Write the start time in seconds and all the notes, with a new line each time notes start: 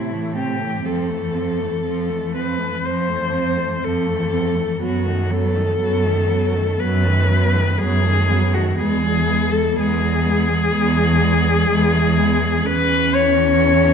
Already playing: A2 C3 C4 E4
0.11 E3 A3
0.35 C3 C4 G4
0.59 E3 A3
0.84 F2 F3 C4 A4
1.10 E3 A3
1.34 F3 C4
1.60 E3 A3
1.85 F2 F3 C4
2.09 E3 A3
2.34 F3 C4 B4
2.58 E3 A3
2.83 F2 F3 C4 C5
3.08 E3 A3
3.33 F3 C4
3.57 E3 A3
3.81 F2 F3 C4 A4
4.06 E3 A3
4.33 F3 C4
4.55 E3 A3
4.80 F#2 F#3 B3 F#4
5.06 D#3 A3
5.29 F#3 B3 A4
5.54 D#3 A3
5.79 F#2 F#3 B3
6.04 D#3 A3
6.28 F#3 B3
6.53 D#3 A3
6.78 F#2 F#3 B3 B4
7.04 D#3 A3
7.28 F#3 B3
7.54 D#3 A3
7.79 F#2 F#3 B3 G#4
8.04 D#3 A3
8.29 F#3 B3
8.53 D#3 A3 F#4
8.77 E2 G#3 B3 G#4
9.01 E3 G#3
9.26 G#3 B3
9.49 E3 G#3 A4
9.74 E2 G#3 B3 G#4
9.99 E3 G#3
10.24 G#3 B3
10.49 E3 G#3
10.73 E2 G#3 B3
10.97 E3 G#3
11.20 G#3 B3
11.43 E3 G#3
11.69 E2 G#3 B3
11.93 E3 G#3
12.17 G#3 B3
12.41 E3 G#3
12.65 E2 E3 C#4 B4
13.14 C#5